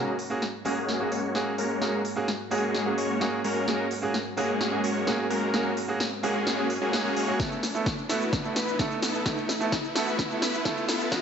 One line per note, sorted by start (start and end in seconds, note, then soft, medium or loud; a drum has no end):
0.00 0.12 G#3 medium
0.00 7.36 G#3 medium
0.00 0.12 A#3 medium
0.00 0.13 A#3 medium
0.00 0.12 C#4 medium
0.00 0.13 C#4 medium
0.00 0.12 F#4 medium
0.00 0.13 F#4 medium
0.00 7.36 F#4 medium
0.00 0.13 G#4 medium
0.00 0.12 A#4 medium
0.00 7.36 A#4 medium
0.00 7.36 C#5 medium
0.00 riser medium
0.19 open hi-hat loud
0.30 0.41 A#3 medium
0.30 0.41 C#4 medium
0.30 0.42 F#4 medium
0.30 0.42 G#4 loud
0.42 snare soft
0.65 1.09 G#3 loud
0.65 0.76 A#3 loud
0.65 1.09 A#3 medium
0.65 0.76 C#4 medium
0.65 1.09 C#4 medium
0.65 1.09 F#4 medium
0.65 0.76 F#4 medium
0.65 1.09 G#4 loud
0.65 0.77 G#4 loud
0.65 open hi-hat loud
0.89 snare soft
1.00 1.11 A#3 medium
1.00 1.11 C#4 medium
1.00 1.11 F#4 medium
1.00 1.12 G#4 medium
1.12 1.38 G#3 medium
1.12 1.38 A#3 medium
1.12 1.38 C#4 medium
1.12 1.38 F#4 medium
1.12 1.38 C#5 medium
1.12 open hi-hat loud
1.35 1.52 A#3 medium
1.35 1.53 C#4 medium
1.35 1.53 F#4 medium
1.35 1.53 G#4 loud
1.35 snare medium
1.58 1.79 G#3 medium
1.58 1.79 A#3 medium
1.58 1.79 C#4 medium
1.58 1.79 F#4 medium
1.58 1.79 A#4 loud
1.58 open hi-hat loud
1.81 1.98 G#3 medium
1.81 1.99 A#3 medium
1.81 1.98 A#3 medium
1.81 1.99 C#4 medium
1.81 1.98 C#4 medium
1.81 1.98 F#4 medium
1.81 1.99 F#4 medium
1.81 2.00 G#4 medium
1.81 1.98 A#4 medium
1.81 snare soft
2.05 open hi-hat loud
2.16 2.27 A#3 medium
2.16 2.27 C#4 medium
2.16 2.28 F#4 medium
2.16 2.28 G#4 loud
2.28 snare medium
2.51 2.95 G#3 loud
2.51 2.62 A#3 loud
2.51 2.95 A#3 medium
2.51 2.62 C#4 medium
2.51 2.95 C#4 medium
2.51 2.95 F#4 medium
2.51 2.62 F#4 medium
2.51 2.95 G#4 loud
2.51 2.63 G#4 loud
2.51 open hi-hat loud
2.75 snare medium
2.86 2.97 A#3 medium
2.86 2.97 C#4 medium
2.86 2.97 F#4 medium
2.86 2.98 G#4 medium
2.98 3.24 G#3 medium
2.98 3.24 A#3 medium
2.98 3.24 C#4 medium
2.98 3.24 F#4 medium
2.98 3.24 C#5 medium
2.98 open hi-hat loud
3.20 3.38 A#3 medium
3.20 3.39 C#4 medium
3.20 3.39 F#4 medium
3.20 3.39 G#4 loud
3.20 snare medium
3.44 3.65 G#3 medium
3.44 3.65 A#3 medium
3.44 3.65 C#4 medium
3.44 3.65 F#4 medium
3.44 3.65 A#4 loud
3.44 open hi-hat loud
3.67 3.84 G#3 medium
3.67 3.85 A#3 medium
3.67 3.84 A#3 medium
3.67 3.85 C#4 medium
3.67 3.84 C#4 medium
3.67 3.84 F#4 medium
3.67 3.85 F#4 medium
3.67 3.86 G#4 medium
3.67 3.84 A#4 loud
3.67 snare medium
3.91 open hi-hat loud
4.02 4.13 A#3 medium
4.02 4.13 C#4 medium
4.02 4.14 F#4 medium
4.02 4.14 G#4 loud
4.14 snare medium
4.37 4.81 G#3 loud
4.37 4.48 A#3 loud
4.37 4.81 A#3 medium
4.37 4.48 C#4 medium
4.37 4.81 C#4 medium
4.37 4.81 F#4 medium
4.37 4.49 F#4 medium
4.37 4.81 G#4 loud
4.37 4.49 G#4 loud
4.37 open hi-hat loud
4.61 snare medium
4.72 4.83 A#3 medium
4.72 4.83 C#4 medium
4.72 4.83 F#4 medium
4.72 4.84 G#4 medium
4.84 5.10 G#3 medium
4.84 5.10 A#3 medium
4.84 5.10 C#4 medium
4.84 5.10 F#4 medium
4.84 5.10 C#5 medium
4.84 open hi-hat loud
5.07 5.25 A#3 medium
5.07 5.25 C#4 medium
5.07 5.25 F#4 medium
5.07 5.25 G#4 loud
5.07 snare medium
5.30 5.51 G#3 medium
5.30 5.51 A#3 medium
5.30 5.51 C#4 medium
5.30 5.51 F#4 medium
5.30 5.51 A#4 loud
5.30 open hi-hat loud
5.53 5.70 G#3 medium
5.53 5.71 A#3 medium
5.53 5.70 A#3 medium
5.53 5.71 C#4 medium
5.53 5.70 C#4 medium
5.53 5.70 F#4 medium
5.53 5.71 F#4 medium
5.53 5.72 G#4 medium
5.53 5.70 A#4 medium
5.53 snare medium
5.77 open hi-hat loud
5.88 5.99 A#3 medium
5.88 6.00 C#4 medium
5.88 6.00 F#4 medium
5.88 6.00 G#4 loud
6.00 snare medium
6.23 6.67 G#3 loud
6.23 6.34 A#3 loud
6.23 6.67 A#3 medium
6.23 6.34 C#4 medium
6.23 6.67 C#4 medium
6.23 6.67 F#4 medium
6.23 6.35 F#4 medium
6.23 6.67 G#4 loud
6.23 6.35 G#4 loud
6.23 open hi-hat loud
6.47 snare medium
6.58 6.69 A#3 medium
6.58 6.69 C#4 medium
6.58 6.69 F#4 medium
6.58 6.70 G#4 medium
6.70 open hi-hat loud
6.81 7.01 G#3 medium
6.81 6.91 A#3 medium
6.81 7.01 A#3 medium
6.81 6.91 C#4 medium
6.81 7.01 C#4 medium
6.81 7.01 F#4 medium
6.81 6.92 F#4 medium
6.81 7.01 G#4 loud
6.81 6.92 G#4 medium
6.93 7.11 A#3 medium
6.93 7.11 C#4 medium
6.93 7.11 F#4 medium
6.93 7.11 G#4 medium
6.93 snare medium
7.05 7.15 G#3 loud
7.05 7.15 A#3 medium
7.05 7.15 C#4 medium
7.05 7.15 F#4 medium
7.05 7.15 G#4 loud
7.16 7.33 G#3 loud
7.16 7.33 A#3 medium
7.16 7.33 C#4 medium
7.16 7.33 F#4 medium
7.16 7.33 C#5 loud
7.16 open hi-hat loud
7.28 7.37 A#3 medium
7.28 7.37 C#4 medium
7.28 7.37 F#4 medium
7.28 7.37 G#4 loud
7.39 7.57 A3 medium
7.39 11.08 A3 medium
7.39 7.57 B3 medium
7.39 7.56 B3 medium
7.39 11.08 E4 medium
7.39 7.56 E4 medium
7.39 7.57 E4 medium
7.39 7.56 A4 medium
7.39 7.58 A4 medium
7.39 11.22 B4 medium
7.39 11.08 E5 medium
7.39 kick loud
7.39 snare medium
7.39 cabasa soft
7.52 cabasa soft
7.63 snare medium
7.63 open hi-hat loud
7.63 cabasa medium
7.74 7.85 A3 medium
7.74 7.86 B3 medium
7.74 7.86 E4 medium
7.74 7.86 A4 loud
7.74 cabasa soft
7.86 kick loud
7.86 snare medium
7.86 cabasa soft
7.98 cabasa soft
8.09 8.20 A3 loud
8.09 8.20 B3 medium
8.09 8.53 B3 loud
8.09 8.53 E4 medium
8.09 8.21 E4 medium
8.09 8.53 F#4 loud
8.09 8.21 A4 loud
8.09 snare medium
8.09 open hi-hat loud
8.09 cabasa medium
8.22 cabasa soft
8.33 kick loud
8.33 snare medium
8.33 cabasa soft
8.44 8.55 A3 medium
8.44 8.55 B3 medium
8.44 8.56 E4 medium
8.44 8.56 A4 medium
8.44 cabasa soft
8.56 8.82 B3 medium
8.56 8.82 E4 medium
8.56 8.82 B4 medium
8.56 snare medium
8.56 open hi-hat loud
8.56 cabasa medium
8.68 cabasa soft
8.79 8.97 A3 medium
8.79 8.97 B3 medium
8.79 8.97 E4 medium
8.79 8.97 A4 loud
8.79 kick loud
8.79 snare medium
8.79 cabasa soft
8.91 cabasa soft
9.02 9.23 B3 medium
9.02 9.23 E4 medium
9.02 9.23 A4 loud
9.02 snare medium
9.02 open hi-hat loud
9.02 cabasa medium
9.15 cabasa soft
9.25 9.43 A3 medium
9.25 9.43 B3 medium
9.25 9.42 B3 medium
9.25 9.42 E4 medium
9.25 9.44 E4 medium
9.25 9.42 A4 loud
9.25 9.44 A4 medium
9.25 kick loud
9.25 snare medium
9.25 cabasa soft
9.38 cabasa soft
9.49 snare medium
9.49 open hi-hat loud
9.49 cabasa medium
9.60 9.71 A3 medium
9.60 9.72 B3 medium
9.60 9.72 E4 medium
9.60 9.72 A4 loud
9.60 cabasa soft
9.72 kick loud
9.72 snare medium
9.72 cabasa soft
9.84 cabasa soft
9.95 10.06 A3 loud
9.95 10.06 B3 loud
9.95 10.39 B3 loud
9.95 10.39 E4 medium
9.95 10.07 E4 medium
9.95 10.39 F#4 loud
9.95 10.07 A4 loud
9.95 snare medium
9.95 open hi-hat loud
9.95 cabasa medium
10.08 cabasa soft
10.19 kick loud
10.19 snare medium
10.19 cabasa soft
10.30 10.41 A3 medium
10.30 10.41 B3 medium
10.30 10.42 E4 medium
10.30 10.42 A4 medium
10.30 cabasa soft
10.42 10.68 B3 medium
10.42 10.68 E4 medium
10.42 10.68 B4 medium
10.42 snare medium
10.42 open hi-hat loud
10.42 cabasa medium
10.54 cabasa soft
10.65 10.83 A3 medium
10.65 10.83 B3 medium
10.65 10.83 E4 medium
10.65 10.83 A4 loud
10.65 kick loud
10.65 snare medium
10.65 cabasa soft
10.77 cabasa soft
10.89 11.09 B3 medium
10.89 11.09 E4 medium
10.89 11.09 A4 loud
10.89 snare medium
10.89 open hi-hat loud
10.89 cabasa medium
11.01 cabasa soft
11.11 11.22 G#3 medium
11.11 11.22 B3 medium
11.11 11.22 D#4 medium
11.11 11.22 F#4 medium
11.11 11.22 B4 medium
11.11 11.22 D#5 medium
11.11 kick loud
11.11 snare medium
11.11 cabasa soft